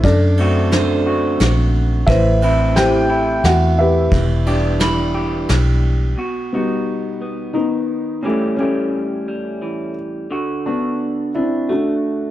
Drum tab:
RD |xxx-x-|xxx-x-|xxx-x-|------|
SD |--o-o-|--o-o-|--o-o-|------|
BD |o-----|o-----|o-----|------|

RD |------|------|
SD |------|------|
BD |------|------|